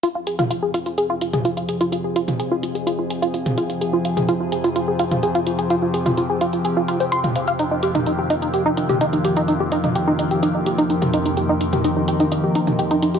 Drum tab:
HH |x-xxx-xxx-xxxxxx|x-xxx-xxx-xxxxxx|x-xxx-xxx-xxxxxx|x-xxx-xxx-xxxxxx|
T2 |---o-------o----|---o---------o--|---o-------o----|---o---------o--|

HH |x-xxx-xxx-xxxxxx|x-xxx-xxx-xxxxxx|x-xxx-xxx-xxxxxx|
T2 |---o-------o----|---o---------o--|---o-------o----|